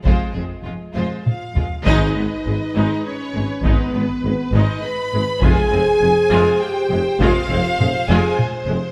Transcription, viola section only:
0, 0, Header, 1, 2, 480
1, 0, Start_track
1, 0, Tempo, 602410
1, 43, Time_signature, 3, 2, 24, 8
1, 1963, Tempo, 591133
1, 7203, End_track
2, 0, Start_track
2, 0, Title_t, "Viola section"
2, 0, Program_c, 0, 48
2, 46, Note_on_c, 0, 56, 57
2, 269, Note_off_c, 0, 56, 0
2, 286, Note_on_c, 0, 56, 31
2, 350, Note_off_c, 0, 56, 0
2, 525, Note_on_c, 0, 56, 32
2, 588, Note_off_c, 0, 56, 0
2, 760, Note_on_c, 0, 56, 47
2, 986, Note_off_c, 0, 56, 0
2, 1247, Note_on_c, 0, 56, 42
2, 1311, Note_off_c, 0, 56, 0
2, 1472, Note_on_c, 0, 63, 86
2, 1474, Note_on_c, 0, 56, 87
2, 1700, Note_off_c, 0, 63, 0
2, 1701, Note_off_c, 0, 56, 0
2, 1718, Note_on_c, 0, 56, 42
2, 1721, Note_on_c, 0, 59, 37
2, 1781, Note_off_c, 0, 56, 0
2, 1785, Note_off_c, 0, 59, 0
2, 1966, Note_on_c, 0, 56, 42
2, 1970, Note_off_c, 0, 56, 0
2, 1970, Note_on_c, 0, 56, 42
2, 2035, Note_off_c, 0, 56, 0
2, 2195, Note_on_c, 0, 56, 61
2, 2196, Note_on_c, 0, 63, 56
2, 2423, Note_off_c, 0, 56, 0
2, 2424, Note_off_c, 0, 63, 0
2, 2680, Note_on_c, 0, 56, 52
2, 2681, Note_off_c, 0, 56, 0
2, 2681, Note_on_c, 0, 56, 49
2, 2746, Note_off_c, 0, 56, 0
2, 2919, Note_on_c, 0, 56, 59
2, 2922, Note_on_c, 0, 63, 59
2, 3146, Note_off_c, 0, 56, 0
2, 3148, Note_off_c, 0, 63, 0
2, 3153, Note_on_c, 0, 59, 45
2, 3158, Note_on_c, 0, 56, 42
2, 3218, Note_off_c, 0, 59, 0
2, 3223, Note_off_c, 0, 56, 0
2, 3413, Note_on_c, 0, 56, 38
2, 3416, Note_off_c, 0, 56, 0
2, 3416, Note_on_c, 0, 56, 40
2, 3481, Note_off_c, 0, 56, 0
2, 3650, Note_on_c, 0, 56, 61
2, 3651, Note_on_c, 0, 63, 60
2, 3872, Note_off_c, 0, 56, 0
2, 3872, Note_off_c, 0, 63, 0
2, 4138, Note_on_c, 0, 56, 54
2, 4139, Note_off_c, 0, 56, 0
2, 4139, Note_on_c, 0, 56, 52
2, 4204, Note_off_c, 0, 56, 0
2, 4363, Note_on_c, 0, 65, 68
2, 4365, Note_on_c, 0, 56, 71
2, 4588, Note_off_c, 0, 65, 0
2, 4589, Note_off_c, 0, 56, 0
2, 4605, Note_on_c, 0, 60, 53
2, 4608, Note_on_c, 0, 56, 45
2, 4670, Note_off_c, 0, 60, 0
2, 4673, Note_off_c, 0, 56, 0
2, 4848, Note_on_c, 0, 56, 43
2, 4849, Note_off_c, 0, 56, 0
2, 4849, Note_on_c, 0, 56, 53
2, 4914, Note_off_c, 0, 56, 0
2, 5087, Note_on_c, 0, 65, 77
2, 5088, Note_on_c, 0, 56, 79
2, 5312, Note_off_c, 0, 65, 0
2, 5313, Note_off_c, 0, 56, 0
2, 5576, Note_on_c, 0, 56, 62
2, 5577, Note_off_c, 0, 56, 0
2, 5577, Note_on_c, 0, 56, 64
2, 5642, Note_off_c, 0, 56, 0
2, 5815, Note_on_c, 0, 65, 73
2, 5817, Note_on_c, 0, 56, 87
2, 6035, Note_off_c, 0, 65, 0
2, 6036, Note_off_c, 0, 56, 0
2, 6054, Note_on_c, 0, 60, 60
2, 6056, Note_on_c, 0, 56, 62
2, 6119, Note_off_c, 0, 60, 0
2, 6121, Note_off_c, 0, 56, 0
2, 6290, Note_on_c, 0, 56, 56
2, 6291, Note_off_c, 0, 56, 0
2, 6291, Note_on_c, 0, 56, 62
2, 6356, Note_off_c, 0, 56, 0
2, 6537, Note_on_c, 0, 56, 87
2, 6539, Note_on_c, 0, 65, 81
2, 6754, Note_off_c, 0, 56, 0
2, 6755, Note_off_c, 0, 65, 0
2, 7002, Note_on_c, 0, 56, 66
2, 7004, Note_off_c, 0, 56, 0
2, 7004, Note_on_c, 0, 56, 66
2, 7069, Note_off_c, 0, 56, 0
2, 7203, End_track
0, 0, End_of_file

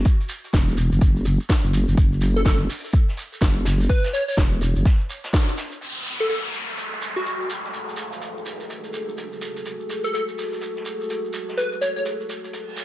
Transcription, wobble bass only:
0, 0, Header, 1, 2, 480
1, 0, Start_track
1, 0, Key_signature, 3, "minor"
1, 0, Tempo, 480000
1, 55, Time_signature, 4, 2, 24, 8
1, 12846, End_track
2, 0, Start_track
2, 0, Title_t, "Wobble bass"
2, 0, Program_c, 0, 39
2, 535, Note_on_c, 0, 28, 97
2, 900, Note_off_c, 0, 28, 0
2, 924, Note_on_c, 0, 30, 99
2, 1000, Note_off_c, 0, 30, 0
2, 1015, Note_on_c, 0, 30, 93
2, 1380, Note_off_c, 0, 30, 0
2, 1644, Note_on_c, 0, 30, 92
2, 1860, Note_off_c, 0, 30, 0
2, 1884, Note_on_c, 0, 30, 97
2, 1960, Note_off_c, 0, 30, 0
2, 1975, Note_on_c, 0, 30, 95
2, 2440, Note_off_c, 0, 30, 0
2, 2455, Note_on_c, 0, 30, 98
2, 2680, Note_off_c, 0, 30, 0
2, 3415, Note_on_c, 0, 30, 94
2, 3880, Note_off_c, 0, 30, 0
2, 4375, Note_on_c, 0, 28, 101
2, 4740, Note_off_c, 0, 28, 0
2, 4764, Note_on_c, 0, 30, 98
2, 4840, Note_off_c, 0, 30, 0
2, 12846, End_track
0, 0, End_of_file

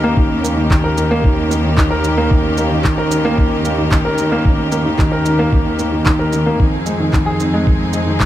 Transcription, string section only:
0, 0, Header, 1, 2, 480
1, 0, Start_track
1, 0, Tempo, 535714
1, 151, Time_signature, 4, 2, 24, 8
1, 7396, End_track
2, 0, Start_track
2, 0, Title_t, "String section"
2, 0, Program_c, 0, 48
2, 0, Note_on_c, 0, 51, 80
2, 0, Note_on_c, 0, 58, 74
2, 0, Note_on_c, 0, 61, 74
2, 0, Note_on_c, 0, 67, 88
2, 5871, Note_off_c, 0, 51, 0
2, 5871, Note_off_c, 0, 58, 0
2, 5871, Note_off_c, 0, 61, 0
2, 5873, Note_off_c, 0, 67, 0
2, 5909, Note_on_c, 0, 63, 77
2, 5910, Note_on_c, 0, 68, 90
2, 5911, Note_on_c, 0, 53, 83
2, 5912, Note_on_c, 0, 60, 77
2, 7396, Note_off_c, 0, 53, 0
2, 7396, Note_off_c, 0, 60, 0
2, 7396, Note_off_c, 0, 63, 0
2, 7396, Note_off_c, 0, 68, 0
2, 7396, End_track
0, 0, End_of_file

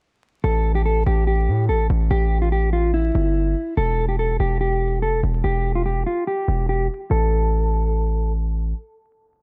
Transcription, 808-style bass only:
0, 0, Header, 1, 2, 480
1, 0, Start_track
1, 0, Tempo, 416667
1, 507, Time_signature, 4, 2, 24, 8
1, 10855, End_track
2, 0, Start_track
2, 0, Title_t, "808-style bass"
2, 0, Program_c, 0, 38
2, 507, Note_on_c, 0, 33, 109
2, 1198, Note_off_c, 0, 33, 0
2, 1226, Note_on_c, 0, 33, 106
2, 1706, Note_on_c, 0, 45, 93
2, 1723, Note_off_c, 0, 33, 0
2, 1946, Note_on_c, 0, 33, 96
2, 1964, Note_off_c, 0, 45, 0
2, 2175, Note_off_c, 0, 33, 0
2, 2187, Note_on_c, 0, 33, 104
2, 2417, Note_off_c, 0, 33, 0
2, 2427, Note_on_c, 0, 33, 110
2, 3581, Note_off_c, 0, 33, 0
2, 3628, Note_on_c, 0, 31, 105
2, 4088, Note_off_c, 0, 31, 0
2, 4347, Note_on_c, 0, 28, 111
2, 5038, Note_off_c, 0, 28, 0
2, 5068, Note_on_c, 0, 28, 105
2, 5788, Note_on_c, 0, 29, 97
2, 5805, Note_off_c, 0, 28, 0
2, 5908, Note_on_c, 0, 28, 95
2, 5925, Note_off_c, 0, 29, 0
2, 6021, Note_off_c, 0, 28, 0
2, 6028, Note_on_c, 0, 28, 101
2, 6258, Note_off_c, 0, 28, 0
2, 6269, Note_on_c, 0, 28, 112
2, 6959, Note_off_c, 0, 28, 0
2, 7467, Note_on_c, 0, 28, 103
2, 7928, Note_off_c, 0, 28, 0
2, 8187, Note_on_c, 0, 33, 110
2, 10061, Note_off_c, 0, 33, 0
2, 10855, End_track
0, 0, End_of_file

